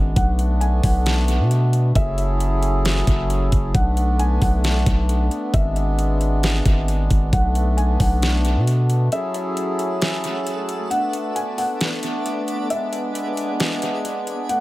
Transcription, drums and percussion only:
0.16 kick, closed hi-hat
0.39 closed hi-hat
0.61 closed hi-hat
0.83 kick, open hi-hat
1.06 snare, closed hi-hat
1.28 closed hi-hat
1.51 closed hi-hat
1.73 closed hi-hat
1.95 kick, closed hi-hat
2.18 closed hi-hat
2.40 closed hi-hat
2.63 closed hi-hat
2.85 snare, closed hi-hat
3.07 kick, closed hi-hat
3.30 closed hi-hat
3.52 kick, closed hi-hat
3.75 kick, closed hi-hat
3.97 closed hi-hat
4.19 closed hi-hat
4.42 kick, open hi-hat
4.64 snare, closed hi-hat
4.86 kick, closed hi-hat
5.09 closed hi-hat
5.31 closed hi-hat
5.54 kick, closed hi-hat
5.76 closed hi-hat
5.99 closed hi-hat
6.21 closed hi-hat
6.43 snare, closed hi-hat
6.65 kick, closed hi-hat
6.88 closed hi-hat
7.10 kick, closed hi-hat
7.33 kick, closed hi-hat
7.55 closed hi-hat
7.78 closed hi-hat
8.00 kick, open hi-hat
8.22 snare, closed hi-hat
8.45 closed hi-hat
8.67 closed hi-hat
8.90 closed hi-hat
9.12 closed hi-hat
9.34 closed hi-hat
9.57 closed hi-hat
9.79 closed hi-hat
10.02 snare, closed hi-hat
10.24 closed hi-hat
10.47 closed hi-hat
10.69 closed hi-hat
10.91 closed hi-hat
11.13 closed hi-hat
11.36 closed hi-hat
11.58 open hi-hat
11.81 snare, closed hi-hat
12.03 closed hi-hat
12.26 closed hi-hat
12.48 closed hi-hat
12.70 closed hi-hat
12.93 closed hi-hat
13.15 closed hi-hat
13.37 closed hi-hat
13.60 snare, closed hi-hat
13.82 closed hi-hat
14.05 closed hi-hat
14.27 closed hi-hat
14.49 closed hi-hat

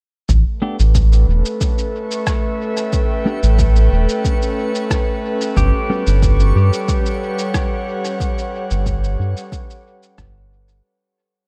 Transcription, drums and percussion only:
0.29 kick, cabasa
0.80 cabasa
0.95 kick, cabasa
1.13 cabasa
1.46 cabasa
1.61 kick, cabasa
1.78 cabasa
2.11 cabasa
2.27 kick, cross-stick, cabasa
2.77 cabasa
2.93 kick, cabasa
3.43 cabasa
3.59 kick, cabasa
3.76 cabasa
4.09 cabasa
4.25 kick, cabasa
4.42 cabasa
4.75 cabasa
4.91 kick, cross-stick, cabasa
5.41 cabasa
5.57 kick, cabasa
6.07 cabasa
6.23 kick, cabasa
6.40 cabasa
6.73 cabasa
6.88 kick, cabasa
7.06 cabasa
7.39 cabasa
7.54 kick, cross-stick, cabasa
8.05 cabasa
8.20 kick, cabasa
8.38 cabasa
8.71 cabasa
8.86 kick, cabasa
9.04 cabasa
9.37 cabasa
9.52 kick, cabasa
9.70 cabasa
10.03 cabasa
10.18 kick, cross-stick, cabasa
10.69 cabasa

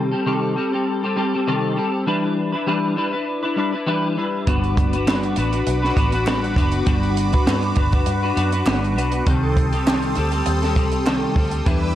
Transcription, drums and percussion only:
4.47 kick, closed hi-hat
4.64 closed hi-hat
4.77 kick, closed hi-hat
4.93 closed hi-hat
5.08 snare, clap
5.23 closed hi-hat
5.36 closed hi-hat
5.53 closed hi-hat
5.67 closed hi-hat
5.84 snare
5.97 kick, closed hi-hat
6.12 closed hi-hat
6.27 snare, clap
6.44 closed hi-hat
6.56 kick, closed hi-hat
6.72 closed hi-hat
6.87 kick, closed hi-hat
7.03 closed hi-hat
7.17 closed hi-hat
7.33 kick, closed hi-hat
7.47 snare, clap
7.62 closed hi-hat
7.76 kick, closed hi-hat
7.92 kick, closed hi-hat
8.06 closed hi-hat
8.37 closed hi-hat
8.52 closed hi-hat
8.66 snare, clap
8.84 closed hi-hat
8.98 closed hi-hat
9.12 closed hi-hat
9.26 kick, closed hi-hat
9.57 kick, closed hi-hat
9.72 closed hi-hat
9.87 snare, clap
10.02 closed hi-hat
10.15 closed hi-hat
10.32 closed hi-hat
10.46 closed hi-hat
10.62 snare, closed hi-hat
10.76 kick, closed hi-hat
10.92 closed hi-hat
11.06 snare, clap
11.36 kick, open hi-hat
11.51 closed hi-hat
11.66 kick, closed hi-hat

